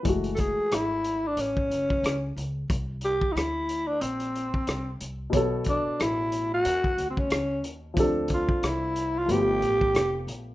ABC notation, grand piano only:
X:1
M:4/4
L:1/8
Q:"Swing 16ths" 1/4=91
K:F#m
V:1 name="Grand piano"
[E,G,A,F]8 | z8 | [B,,B,Ac]8 | [=F,=CDA]4 [F,A,B,^F=G]4 |]